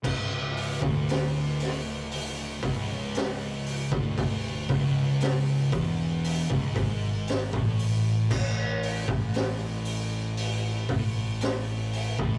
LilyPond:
<<
  \new Staff \with { instrumentName = "Distorted electric guitar" } { \clef bass \time 4/4 \key cis \minor \tempo 4 = 58 cis,8. d,4.~ d,16 cis,4~ cis,16 d,16~ | d,8 cis,4 e,8. cis,16 gis,8. a,8. | a,8. a,4.~ a,16 a,4~ a,16 a,16 | }
  \new Staff \with { instrumentName = "Distorted electric guitar" } { \clef bass \time 4/4 \key cis \minor cis,8. d,4.~ d,16 cis,4~ cis,16 d,16~ | d,8 cis,4 e,8. cis,16 gis,8. a,8. | a,8. a,4.~ a,16 a,4~ a,16 a,16 | }
  \new Staff \with { instrumentName = "Fingered electric bass" } { \clef bass \time 4/4 \key cis \minor cis,,8. d,,4.~ d,,16 cis,,4~ cis,,16 d,,16~ | d,,8 cis,,4 e,,8. cis,,16 gis,,8. a,,8. | a,,8. a,,4.~ a,,16 a,,4~ a,,16 a,,16 | }
  \new DrumStaff \with { instrumentName = "Drums" } \drummode { \time 4/4 <cymc bd>8 hho16 bd16 <hho sn>8 <hho sn>8 hho8 <hho bd>8 <hho sn>8 hho16 bd16 | <hho bd>8 <hho bd>8 <hho sn>8 <hho bd>8 hho16 bd16 <hho bd>8 <hho sn>16 bd16 hho8 | <cymc bd>8 hho16 bd16 <hho sn>8 hho8 hho8 <hho bd>8 <hho sn>8 hho16 bd16 | }
>>